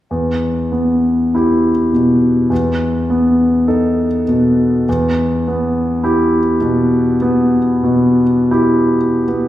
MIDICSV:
0, 0, Header, 1, 2, 480
1, 0, Start_track
1, 0, Key_signature, 1, "minor"
1, 0, Tempo, 1226994
1, 44, Time_signature, 4, 2, 24, 8
1, 523, Tempo, 1171875
1, 2923, Tempo, 1307190
1, 3403, Tempo, 1558442
1, 3704, End_track
2, 0, Start_track
2, 0, Title_t, "Grand piano"
2, 0, Program_c, 0, 0
2, 42, Note_on_c, 0, 40, 38
2, 116, Control_c, 0, 64, 127
2, 281, Note_on_c, 0, 59, 32
2, 527, Note_on_c, 0, 64, 33
2, 531, Note_on_c, 0, 67, 35
2, 669, Note_off_c, 0, 59, 0
2, 753, Note_off_c, 0, 64, 0
2, 755, Note_off_c, 0, 67, 0
2, 767, Note_on_c, 0, 47, 33
2, 987, Note_off_c, 0, 40, 0
2, 1000, Note_on_c, 0, 40, 41
2, 1004, Note_off_c, 0, 47, 0
2, 1010, Control_c, 0, 64, 0
2, 1083, Control_c, 0, 64, 127
2, 1245, Note_on_c, 0, 59, 34
2, 1482, Note_on_c, 0, 69, 38
2, 1483, Note_on_c, 0, 63, 35
2, 1633, Note_off_c, 0, 59, 0
2, 1711, Note_off_c, 0, 69, 0
2, 1712, Note_off_c, 0, 63, 0
2, 1729, Note_on_c, 0, 47, 36
2, 1953, Note_off_c, 0, 40, 0
2, 1971, Note_off_c, 0, 47, 0
2, 1977, Note_on_c, 0, 40, 45
2, 1978, Control_c, 0, 64, 0
2, 2052, Control_c, 0, 64, 127
2, 2219, Note_on_c, 0, 59, 41
2, 2448, Note_on_c, 0, 64, 39
2, 2450, Note_on_c, 0, 67, 43
2, 2592, Note_off_c, 0, 59, 0
2, 2667, Note_off_c, 0, 64, 0
2, 2668, Note_off_c, 0, 67, 0
2, 2684, Note_on_c, 0, 47, 42
2, 2910, Note_off_c, 0, 40, 0
2, 2931, Note_on_c, 0, 59, 43
2, 3059, Note_off_c, 0, 47, 0
2, 3156, Note_on_c, 0, 47, 41
2, 3303, Note_off_c, 0, 59, 0
2, 3406, Note_on_c, 0, 64, 39
2, 3406, Note_on_c, 0, 67, 44
2, 3543, Note_off_c, 0, 47, 0
2, 3629, Note_off_c, 0, 64, 0
2, 3629, Note_off_c, 0, 67, 0
2, 3643, Note_on_c, 0, 59, 36
2, 3704, Note_off_c, 0, 59, 0
2, 3704, End_track
0, 0, End_of_file